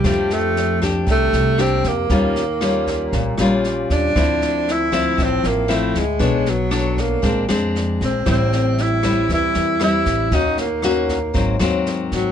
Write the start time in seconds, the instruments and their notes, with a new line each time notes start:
Already playing: tenor saxophone G3
0.04 upright bass F2, nylon-string guitar F3 A3 D4 G4, kick, cross-stick, snare
0.30 tenor saxophone A3, snare
0.56 snare
0.81 nylon-string guitar A3 D4 G4, kick, cross-stick, snare
1.07 upright bass C2, nylon-string guitar C3, kick, snare
1.11 tenor saxophone A3
1.33 upright bass C2, snare
1.58 nylon-string guitar A3 D4 G4, tenor saxophone C4, cross-stick, snare
1.84 upright bass F2, tenor saxophone A#3, kick, snare
2.09 upright bass D#2, nylon-string guitar D#3 G3 C#4 F4, kick, snare
2.35 snare
2.61 nylon-string guitar G3 C#4 F4, cross-stick, snare
2.87 kick, snare
3.12 upright bass A#1, nylon-string guitar A#2, kick, snare
3.38 upright bass A#1, nylon-string guitar G3 C#4 F4, cross-stick, snare
3.64 snare
3.90 upright bass D#2, tenor saxophone D4, kick, snare
4.16 upright bass D2, nylon-string guitar D3 F3 C4 E4, kick, cross-stick, snare
4.41 snare
4.68 tenor saxophone E4, snare
4.92 nylon-string guitar F3 C4 E4, kick, cross-stick, snare
5.18 upright bass A1, nylon-string guitar A2, kick, snare
5.23 tenor saxophone C4
5.44 upright bass A1, tenor saxophone A#3, snare
5.68 nylon-string guitar F3 C4 E4, cross-stick, snare
5.74 tenor saxophone A3
5.95 upright bass D2, tenor saxophone G#3, kick, snare
6.19 upright bass B1, nylon-string guitar B3 D4 A4 C#5, kick, snare
6.46 tenor saxophone F#3, snare
6.71 nylon-string guitar D4 A4 C#5, cross-stick, snare
6.97 tenor saxophone A#3, kick, snare
7.22 upright bass A#1, nylon-string guitar A#2 G#3 C4 D4, kick, snare
7.49 upright bass F2, nylon-string guitar G#3 C4 D4, cross-stick, snare
7.75 snare
8.00 upright bass A#1, tenor saxophone C4, kick, snare
8.25 upright bass A1, nylon-string guitar A2 G3 C4 E4, kick, cross-stick, snare
8.30 tenor saxophone C4
8.52 snare
8.78 tenor saxophone E4, snare
9.03 nylon-string guitar G3 C4 E4, kick, cross-stick, snare
9.29 upright bass E2, nylon-string guitar E3, kick, snare
9.34 tenor saxophone E4
9.54 upright bass E2, snare
9.80 nylon-string guitar G3 C4 E4, tenor saxophone E4, cross-stick, snare
10.05 upright bass A1, kick, snare
10.31 upright bass D#2, nylon-string guitar D#3 A#3 C#4 F#4, tenor saxophone D#4, kick, snare
10.57 tenor saxophone A#3, snare
10.82 nylon-string guitar A#3 C#4 F#4, cross-stick, snare
11.09 kick, snare
11.34 upright bass G#1, nylon-string guitar G#2 F#3 A#3 C4, kick, snare
11.59 upright bass D#2, nylon-string guitar F#3 A#3 C4, cross-stick, snare
11.86 snare
12.11 upright bass G#1, tenor saxophone F#3, kick, snare